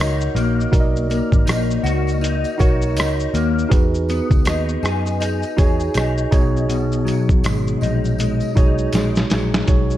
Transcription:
Already playing: picked electric bass C#2, clean electric guitar A#3 F#4, tine electric piano D#4 F#4 A#4 C#5
0.00 clean electric guitar D#4, cross-stick
0.21 shaker
0.35 picked electric bass A#1, clean electric guitar A#3, closed hi-hat, tambourine, shaker
0.60 shaker
0.72 picked electric bass B1, tine electric piano D#4 F#4 A#4 D5, kick, closed hi-hat, tambourine, shaker
0.80 tine electric piano D#5
0.96 shaker
1.10 clean electric guitar A#3, closed hi-hat, tambourine, shaker
1.32 picked electric bass G#1, kick, shaker
1.46 picked electric bass A#1, clean electric guitar D#4, cross-stick, closed hi-hat, tambourine, shaker
1.71 shaker
1.83 picked electric bass C#2, clean electric guitar F#4, closed hi-hat, tambourine, shaker
2.07 tambourine, shaker
2.21 clean electric guitar D#4, closed hi-hat, tambourine, shaker
2.44 tambourine, shaker
2.58 picked electric bass B1, tine electric piano D#4 F#4 A#4 C#5, clean electric guitar F#4, kick, closed hi-hat, tambourine, shaker
2.82 tambourine, shaker
2.96 picked electric bass C#2, clean electric guitar D#4, cross-stick, closed hi-hat, tambourine, shaker
3.20 shaker
3.34 picked electric bass D#2, clean electric guitar A#3, closed hi-hat, tambourine, shaker
3.59 shaker
3.69 picked electric bass E2, tine electric piano D#4 F#4 G#4 B4, kick, closed hi-hat, tambourine, shaker
3.94 shaker
4.09 clean electric guitar B3, closed hi-hat, tambourine, shaker
4.30 picked electric bass C#2, kick, tambourine, shaker
4.45 picked electric bass D#2, clean electric guitar D#4, cross-stick, closed hi-hat, tambourine, shaker
4.69 shaker
4.83 picked electric bass F#2, clean electric guitar G#4, cross-stick, closed hi-hat, tambourine, shaker
5.05 tambourine, shaker
5.20 clean electric guitar D#4, closed hi-hat, tambourine, shaker
5.42 tambourine, shaker
5.57 picked electric bass E2, tine electric piano D#4 F#4 G#4 C#5, clean electric guitar G#4, kick, closed hi-hat, tambourine, shaker
5.80 tambourine, shaker
5.94 picked electric bass B1, clean electric guitar D#4, cross-stick, closed hi-hat, tambourine, shaker
6.18 shaker
6.31 picked electric bass B1, clean electric guitar B2, tine electric piano D#4 F#4 G#4 C#5, kick, closed hi-hat, tambourine, shaker
6.57 shaker
6.69 clean electric guitar B2, closed hi-hat, tambourine, shaker
6.92 shaker
7.05 clean electric guitar F#3, closed hi-hat, tambourine, shaker
7.29 picked electric bass B1, kick, shaker
7.44 picked electric bass G#1, clean electric guitar G#3, cross-stick, closed hi-hat, tambourine, shaker
7.67 shaker
7.81 picked electric bass A#1, clean electric guitar D#4, closed hi-hat, tambourine, shaker
8.04 tambourine, shaker
8.18 clean electric guitar G#3, closed hi-hat, tambourine, shaker
8.40 tambourine, shaker
8.55 picked electric bass B1, tine electric piano D#4 F#4 G#4 C#5, clean electric guitar D#4, kick, closed hi-hat, tambourine, shaker
8.78 shaker
8.93 picked electric bass A#1, clean electric guitar G#3, snare, closed hi-hat, tambourine, shaker
9.15 snare, shaker
9.30 picked electric bass A#1, clean electric guitar F#3, snare, closed hi-hat, tambourine, shaker
9.54 snare, shaker
9.66 picked electric bass B1, tine electric piano D#4 F#4 G#4 C#5, kick, closed hi-hat, shaker
9.90 shaker

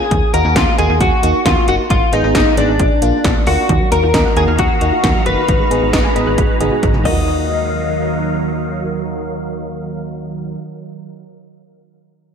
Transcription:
Already playing: clean electric guitar G#4
0.11 fm bass D#2, kick, closed hi-hat
0.33 fm bass D#2, fm electric piano A#3 D#4 F#4, clean electric guitar A#4, closed hi-hat
0.45 fm bass D#2, fm electric piano A#3 D#4 F#4
0.56 fm bass D#2, clean electric guitar F4, kick, snare, closed hi-hat
0.78 fm bass D#2, fm electric piano A#3 D#4 F#4, clean electric guitar G#4, closed hi-hat
0.90 fm bass D#2
1.01 fm bass D#2, clean electric guitar F#4, kick, closed hi-hat
1.23 fm bass D#2, fm electric piano A#3 D#4 F#4, closed hi-hat
1.46 fm bass D#2, clean electric guitar F4, kick, snare, closed hi-hat
1.68 fm bass F#1, fm electric piano A#3 D#4 F#4, clean electric guitar F#4, closed hi-hat
1.90 fm bass G#1, clean electric guitar F4, kick, closed hi-hat
2.13 fm bass G#1, fm electric piano B3 D#4 G#4, clean electric guitar D#4, closed hi-hat
2.24 fm bass G#1, fm electric piano B3 D#4 G#4
2.35 fm bass G#1, clean electric guitar D#4, kick, snare, closed hi-hat
2.57 fm bass G#1, fm electric piano B3 D#4 G#4, clean electric guitar D4, closed hi-hat
2.68 fm bass G#1
2.79 fm bass A#1, kick, closed hi-hat
3.02 fm bass A#1, fm electric piano A#3 D4 F4, closed hi-hat
3.24 fm bass A#1, kick, snare, closed hi-hat
3.47 fm bass D2, fm electric piano A#3 D4 F4, clean electric guitar F#4, open hi-hat
3.69 fm bass D#2, string machine D#3 D#4 F#4 F5 A#5, synth arpeggio sound D#3, kick, closed hi-hat
3.81 synth arpeggio sound F#3
3.92 fm bass D#2, fm electric piano A#3 D#4 F#4, synth arpeggio sound A#3, clean electric guitar A#4, closed hi-hat
4.03 fm bass D#2, synth arpeggio sound F4
4.14 fm bass D#2, synth arpeggio sound D#5, kick, snare, closed hi-hat
4.25 synth arpeggio sound F#5
4.36 fm bass D#2, fm electric piano A#3 D#4 F#4, clean electric guitar G#4, synth arpeggio sound A#5, closed hi-hat
4.48 fm bass D#2, synth arpeggio sound F6
4.59 fm bass D#2, clean electric guitar F#4, synth arpeggio sound A#5, kick, closed hi-hat
4.81 fm bass D#2, fm electric piano A#3 D#4 F#4, synth arpeggio sound D#5, closed hi-hat
4.93 synth arpeggio sound F4
5.04 fm bass D#2, synth arpeggio sound A#3, kick, snare, closed hi-hat
5.15 synth arpeggio sound F#3
5.26 fm bass F#1, synth arpeggio sound D#3, fm electric piano A#3 D#4 F#4, clean electric guitar B4, closed hi-hat
5.48 fm bass G#1, synth arpeggio sound D#3, string machine G#3 B4, kick, closed hi-hat
5.60 synth arpeggio sound G#3
5.71 fm bass G#1, fm electric piano B3 D#4 G#4, synth arpeggio sound B3, closed hi-hat
5.82 fm bass G#1, synth arpeggio sound F#4
5.93 fm bass G#1, synth arpeggio sound D#5, kick, snare, closed hi-hat
6.05 synth arpeggio sound G#5
6.16 fm bass G#1, fm electric piano B3 D#4 G#4, synth arpeggio sound B5, closed hi-hat
6.27 fm bass G#1, synth arpeggio sound F#6
6.38 fm bass G#1, synth arpeggio sound B5, kick, closed hi-hat, high tom
6.60 fm bass G#1, fm electric piano B3 D#4 G#4, synth arpeggio sound D#5, closed hi-hat, mid tom
6.72 synth arpeggio sound F#4
6.83 fm bass G#1, synth arpeggio sound B3, kick, closed hi-hat, mid tom
6.94 synth arpeggio sound G#3, mid tom
6.99 synth arpeggio sound D#3 F#3
7.03 fm bass D#2, string machine D#3 F#3 D#4 A#4 F5, fm electric piano A#3 D#4 F#4, synth arpeggio sound A#3, clean electric guitar D#5, kick, crash
7.11 synth arpeggio sound F4

